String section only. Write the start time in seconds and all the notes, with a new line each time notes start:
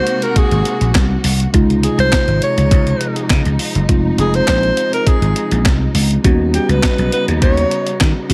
Already playing: C3 G#3 A#3 F#4
1.54 C3 F3 G#3 D#4
3.88 C3 G#3
6.24 C#3 G3 B3 D#4
8.30 C3 G#3 A#3 F#4